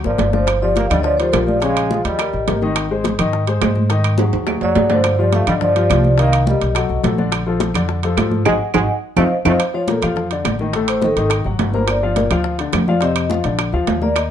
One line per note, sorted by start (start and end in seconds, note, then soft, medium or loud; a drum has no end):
0.04 0.18 G#1 medium
0.04 0.32 F3 medium
0.04 0.28 A#3 medium
0.04 0.28 A#4 medium
0.04 0.32 D5 medium
0.04 high bongo medium
0.04 high conga soft
0.18 0.85 G1 medium
0.18 low bongo medium
0.18 high conga medium
0.18 high timbale medium
0.18 low timbale medium
0.33 0.60 F3 medium
0.33 0.45 D4 medium
0.33 0.61 C5 medium
0.33 0.45 D5 medium
0.33 low bongo medium
0.33 high conga medium
0.47 high bongo medium
0.47 high conga soft
0.47 high timbale medium
0.47 claves medium
0.62 0.75 F3 medium
0.62 0.86 F3 medium
0.62 0.86 F4 medium
0.62 0.86 G4 medium
0.62 0.76 D5 medium
0.62 high conga soft
0.76 0.89 A#3 medium
0.76 0.90 F5 medium
0.76 high bongo medium
0.76 high conga loud
0.76 high timbale medium
0.76 low timbale medium
0.90 1.31 D2 medium
0.90 1.14 D3 medium
0.90 1.00 G3 medium
0.90 1.14 D4 medium
0.90 1.15 D5 medium
0.90 1.02 D#5 loud
0.90 high conga soft
0.90 low conga medium
0.90 high timbale medium
0.90 claves medium
1.01 1.03 D#3 medium
1.01 1.18 F3 medium
1.01 1.05 C#5 medium
1.01 1.19 D5 loud
1.01 high bongo medium
1.06 high conga soft
1.17 1.32 D#3 medium
1.17 1.31 F3 medium
1.17 1.32 F4 medium
1.17 1.32 G4 medium
1.17 1.32 C5 medium
1.17 high bongo soft
1.17 high conga soft
1.17 high timbale medium
1.32 1.99 A#1 medium
1.32 1.39 D3 medium
1.32 1.57 F3 medium
1.32 1.57 F4 medium
1.32 1.57 G4 medium
1.32 1.39 A#4 medium
1.32 high bongo soft
1.32 low bongo medium
1.32 high conga medium
1.32 high timbale medium
1.32 low timbale medium
1.32 claves medium
1.46 1.60 F3 medium
1.46 1.62 D5 medium
1.46 high bongo soft
1.46 high conga medium
1.60 1.86 C#3 medium
1.60 2.02 G#3 medium
1.60 1.86 C#4 medium
1.60 1.86 C#5 medium
1.60 2.01 F5 loud
1.60 high bongo medium
1.60 high timbale medium
1.76 high conga soft
1.76 high timbale medium
1.76 claves medium
1.91 2.15 F3 medium
1.91 2.15 F4 medium
1.91 2.15 G#4 medium
1.91 high bongo medium
1.91 high conga medium
1.91 low timbale medium
2.04 2.31 D#2 medium
2.04 2.58 G3 medium
2.04 2.58 D#5 medium
2.04 high conga soft
2.04 high timbale medium
2.19 2.43 G3 medium
2.19 2.43 G4 medium
2.19 2.43 A#4 medium
2.19 high bongo medium
2.19 high conga soft
2.19 high timbale medium
2.19 claves medium
2.33 2.47 A1 medium
2.33 high bongo soft
2.33 high conga soft
2.47 3.13 G#1 medium
2.47 2.60 G3 medium
2.47 2.60 G4 medium
2.47 2.60 A#4 medium
2.47 high bongo soft
2.47 low bongo medium
2.47 high conga medium
2.47 high timbale medium
2.47 low timbale medium
2.62 2.86 D#3 medium
2.62 2.86 D#4 medium
2.62 2.86 D#5 medium
2.62 high bongo soft
2.62 high conga medium
2.76 high bongo medium
2.76 high timbale medium
2.76 claves medium
2.91 3.14 G#3 medium
2.91 3.14 G#4 medium
2.91 3.14 C5 medium
2.91 high conga soft
3.04 high bongo medium
3.04 high conga loud
3.04 high timbale medium
3.04 low timbale medium
3.19 3.59 G#2 medium
3.19 3.42 D#3 medium
3.19 3.43 D#4 medium
3.19 3.43 D#5 medium
3.19 high conga soft
3.19 low conga medium
3.19 high timbale medium
3.19 claves medium
3.33 high bongo medium
3.47 3.59 G#3 medium
3.47 3.60 G#4 medium
3.47 3.59 C5 medium
3.47 high bongo soft
3.47 high timbale medium
3.61 4.28 G#2 medium
3.61 3.85 G#3 medium
3.61 3.86 G#4 medium
3.61 3.86 C5 medium
3.61 high bongo soft
3.61 low bongo medium
3.61 high conga medium
3.61 high timbale medium
3.61 low timbale medium
3.61 claves medium
3.75 high bongo soft
3.75 high conga medium
3.89 4.14 D#3 medium
3.89 4.14 D#4 medium
3.89 4.14 D#5 medium
3.89 high bongo medium
3.89 high conga soft
3.89 high timbale medium
4.04 high conga soft
4.04 high timbale loud
4.04 claves medium
4.18 4.42 F#3 medium
4.18 4.43 F#4 medium
4.18 4.43 G#4 medium
4.18 high bongo medium
4.18 high conga loud
4.18 high timbale medium
4.33 4.59 D#2 medium
4.33 high conga soft
4.33 high timbale medium
4.47 4.71 F#3 medium
4.47 4.71 F#4 medium
4.47 4.71 G#4 medium
4.47 high bongo medium
4.47 high conga soft
4.47 low timbale medium
4.47 claves medium
4.61 4.75 F2 medium
4.61 4.88 F#3 medium
4.61 4.89 D5 medium
4.61 high bongo soft
4.61 high conga soft
4.61 low timbale medium
4.75 5.42 G2 medium
4.75 4.87 F#3 medium
4.75 4.88 F#4 medium
4.75 4.88 G#4 medium
4.75 high bongo soft
4.75 low bongo medium
4.75 high conga medium
4.75 low timbale loud
4.90 5.13 D3 medium
4.90 5.17 F3 medium
4.90 5.14 D4 medium
4.90 5.17 C5 medium
4.90 5.14 D5 medium
4.90 high bongo soft
4.90 high conga medium
4.90 low timbale medium
5.04 high bongo medium
5.04 high timbale medium
5.04 claves medium
5.18 5.42 F3 medium
5.18 5.32 F3 medium
5.18 5.42 F4 medium
5.18 5.42 G4 medium
5.18 5.34 D5 medium
5.18 high conga soft
5.32 5.46 A3 medium
5.32 5.48 F5 medium
5.32 high bongo medium
5.32 high conga loud
5.32 high timbale medium
5.32 low timbale medium
5.47 5.87 G2 medium
5.47 5.70 D3 medium
5.47 5.55 G3 medium
5.47 5.71 D4 medium
5.47 5.71 D5 medium
5.47 high conga soft
5.47 low conga medium
5.47 high timbale medium
5.47 claves medium
5.61 6.15 F3 medium
5.61 6.20 D5 loud
5.61 high bongo medium
5.61 high conga soft
5.61 low conga medium
5.76 5.87 F3 medium
5.76 5.88 F4 medium
5.76 5.88 G4 medium
5.76 high bongo soft
5.76 high conga soft
5.76 high timbale medium
5.90 6.56 C2 medium
5.90 6.13 F3 medium
5.90 6.14 F4 medium
5.90 6.14 G4 medium
5.90 high bongo soft
5.90 low bongo medium
5.90 high conga medium
5.90 high timbale medium
5.90 low timbale medium
5.90 claves medium
6.04 high bongo soft
6.04 high conga medium
6.18 6.42 D#3 medium
6.18 6.46 A#3 medium
6.18 6.42 D#4 medium
6.18 6.42 D#5 medium
6.18 6.45 F5 loud
6.18 high bongo medium
6.18 high conga soft
6.18 high timbale medium
6.33 high conga soft
6.33 high timbale loud
6.33 claves medium
6.47 6.73 G3 medium
6.47 6.71 G3 medium
6.47 6.71 G4 medium
6.47 6.71 A#4 medium
6.47 7.00 D#5 medium
6.47 high bongo medium
6.47 high conga medium
6.47 low timbale medium
6.61 6.88 B1 medium
6.61 high conga soft
6.61 high timbale medium
6.75 6.99 F#3 medium
6.75 6.99 F#4 medium
6.75 6.99 A4 medium
6.75 high bongo medium
6.75 high conga soft
6.75 high timbale medium
6.75 claves medium
6.89 7.03 B1 medium
6.89 high bongo soft
6.89 high conga soft
7.04 7.69 A#1 medium
7.04 7.16 F#3 medium
7.04 7.16 F#4 medium
7.04 7.16 A4 medium
7.04 high bongo soft
7.04 low bongo medium
7.04 high conga medium
7.04 high timbale medium
7.04 low timbale medium
7.18 7.41 D3 medium
7.18 7.41 D4 medium
7.18 7.42 D5 medium
7.18 high bongo soft
7.18 high conga medium
7.32 high bongo medium
7.32 high conga soft
7.32 high timbale loud
7.32 claves medium
7.46 7.70 F3 medium
7.46 7.70 F4 medium
7.46 7.70 A4 medium
7.46 high conga soft
7.60 high bongo medium
7.60 high conga loud
7.60 high timbale medium
7.60 low timbale medium
7.74 8.14 F2 medium
7.74 7.98 D3 medium
7.74 7.98 D4 medium
7.74 7.99 D5 medium
7.74 high conga soft
7.74 low conga medium
7.74 high timbale medium
7.74 claves medium
7.88 high bongo medium
7.88 high conga soft
8.03 8.15 F3 medium
8.03 8.15 F4 medium
8.03 8.16 A4 medium
8.03 high bongo soft
8.03 high conga soft
8.03 high timbale medium
8.17 8.44 G#2 medium
8.17 8.41 F3 medium
8.17 8.41 F4 medium
8.17 8.42 A4 medium
8.17 high bongo soft
8.17 low bongo medium
8.17 high conga medium
8.17 high timbale medium
8.17 low timbale medium
8.17 claves medium
8.31 high bongo soft
8.31 high conga medium
8.45 8.56 G#1 medium
8.45 8.53 G#3 loud
8.45 8.55 D#4 medium
8.45 8.55 F#4 loud
8.45 8.55 G#4 loud
8.45 8.55 D#5 medium
8.45 8.55 F#5 medium
8.45 8.55 G#5 loud
8.45 low bongo medium
8.45 low conga loud
8.45 high timbale loud
8.45 claves loud
8.74 8.85 G#1 loud
8.74 8.81 G#3 loud
8.74 8.84 D#4 medium
8.74 8.84 F#4 medium
8.74 8.84 G#4 medium
8.74 8.84 D#5 medium
8.74 8.84 F#5 loud
8.74 8.84 G#5 medium
8.74 low bongo medium
8.74 low conga loud
8.74 high timbale medium
8.74 claves loud
9.17 9.28 F2 medium
9.17 9.24 A3 medium
9.17 9.26 C4 medium
9.17 9.26 D#4 medium
9.17 9.26 F4 medium
9.17 9.26 C5 medium
9.17 9.27 D#5 medium
9.17 9.26 F5 medium
9.17 low bongo medium
9.17 low conga loud
9.17 high timbale loud
9.17 claves medium
9.45 9.56 F2 loud
9.45 9.53 A3 medium
9.45 9.55 C4 loud
9.45 9.55 D#4 medium
9.45 9.55 F4 loud
9.45 9.55 C5 medium
9.45 9.55 D#5 medium
9.45 9.55 F5 medium
9.45 low bongo medium
9.45 low conga medium
9.45 high timbale loud
9.45 claves loud
9.59 high bongo medium
9.59 high conga soft
9.59 high timbale medium
9.59 claves medium
9.74 9.86 F3 medium
9.74 9.86 F4 medium
9.74 9.88 C#5 medium
9.74 9.86 F5 medium
9.74 high conga soft
9.88 10.00 A#2 medium
9.88 10.00 A#3 medium
9.88 10.15 A4 medium
9.88 10.00 A#4 medium
9.88 high bongo medium
9.88 high conga loud
9.88 high timbale medium
9.88 low timbale medium
10.02 10.42 F2 medium
10.02 10.26 F3 medium
10.02 10.26 F4 medium
10.02 10.26 F5 medium
10.02 high conga soft
10.02 low conga medium
10.02 high timbale medium
10.02 claves medium
10.16 high bongo medium
10.16 high conga soft
10.16 low conga medium
10.31 10.55 D3 medium
10.31 10.55 D4 medium
10.31 10.55 D5 medium
10.31 high bongo soft
10.31 high conga soft
10.31 high timbale medium
10.45 11.11 A1 medium
10.45 high bongo soft
10.45 low bongo medium
10.45 high conga medium
10.45 high timbale medium
10.45 low timbale medium
10.45 claves medium
10.59 10.72 D#3 medium
10.59 10.72 D#4 medium
10.59 10.72 D#5 medium
10.59 high bongo soft
10.59 high conga medium
10.73 10.98 A2 medium
10.73 10.98 A3 medium
10.73 10.98 A4 medium
10.73 high bongo medium
10.73 high conga soft
10.73 high timbale medium
10.88 11.02 C5 medium
10.88 high conga soft
10.88 high timbale loud
10.88 claves medium
11.02 11.14 D#3 medium
11.02 11.14 D#4 medium
11.02 11.30 A4 medium
11.02 11.15 D#5 medium
11.02 high bongo medium
11.02 high conga loud
11.02 low timbale medium
11.16 11.43 G#1 medium
11.16 11.41 D#3 medium
11.16 11.41 D#4 medium
11.16 11.41 D#5 medium
11.16 high conga soft
11.16 high timbale medium
11.30 high bongo medium
11.30 high conga soft
11.30 high timbale medium
11.30 claves medium
11.44 11.58 G#1 medium
11.44 11.69 F#3 medium
11.44 11.69 F#4 medium
11.44 11.69 F#5 medium
11.44 high bongo soft
11.44 high conga soft
11.59 12.25 G1 medium
11.59 high bongo soft
11.59 low bongo medium
11.59 high conga medium
11.59 high timbale medium
11.59 low timbale medium
11.73 11.97 A#3 medium
11.73 11.97 A#4 medium
11.73 11.88 C5 medium
11.73 11.98 A#5 medium
11.73 high bongo soft
11.73 high conga medium
11.88 12.29 D5 medium
11.88 high bongo medium
11.88 high conga soft
11.88 high timbale medium
11.88 claves medium
12.02 12.14 F3 medium
12.02 12.14 F4 medium
12.02 12.15 F5 medium
12.02 high conga soft
12.16 12.29 A#2 medium
12.16 12.29 A#3 medium
12.16 12.29 A#4 medium
12.16 high bongo medium
12.16 high conga loud
12.16 high timbale medium
12.16 low timbale medium
12.31 12.70 D2 medium
12.31 12.54 F3 medium
12.31 12.55 F4 medium
12.31 12.55 F5 medium
12.31 high conga soft
12.31 low conga medium
12.31 high timbale medium
12.31 claves medium
12.44 high bongo medium
12.44 high conga soft
12.58 12.83 D3 medium
12.58 12.83 D4 medium
12.58 12.83 D5 medium
12.58 high bongo soft
12.58 high conga soft
12.58 high timbale medium
12.73 13.39 F2 medium
12.73 high bongo soft
12.73 low bongo medium
12.73 high conga medium
12.73 high timbale medium
12.73 low timbale medium
12.73 claves medium
12.87 13.00 F3 medium
12.87 13.00 F4 medium
12.87 13.02 D5 medium
12.87 13.00 F5 medium
12.87 high bongo soft
12.87 high conga medium
13.01 13.25 C3 medium
13.01 13.26 C4 medium
13.01 13.26 C5 medium
13.01 13.42 D#5 medium
13.01 high bongo medium
13.01 high conga soft
13.01 high timbale medium
13.16 high conga soft
13.16 high timbale medium
13.16 claves medium
13.30 13.42 F3 medium
13.30 13.43 F4 medium
13.30 13.43 F5 medium
13.30 high bongo medium
13.30 high conga loud
13.30 low timbale medium
13.44 13.71 A#1 medium
13.44 13.68 D3 medium
13.44 13.68 D4 medium
13.44 13.69 D5 medium
13.44 high conga soft
13.44 high timbale medium
13.59 high bongo medium
13.59 high conga soft
13.59 high timbale loud
13.59 claves medium
13.73 13.87 D2 medium
13.73 13.97 F3 medium
13.73 13.97 F4 medium
13.73 13.97 F5 medium
13.73 high bongo soft
13.73 high conga soft
13.87 14.31 D#2 medium
13.87 high bongo soft
13.87 low bongo medium
13.87 high conga medium
13.87 high timbale medium
13.87 low timbale medium
14.02 14.25 A#3 medium
14.02 14.25 A#4 medium
14.02 14.16 D5 medium
14.02 14.26 A#5 medium
14.02 high bongo soft
14.02 high conga medium
14.16 14.31 D#5 medium
14.16 high bongo medium
14.16 high conga soft
14.16 high timbale loud
14.16 claves medium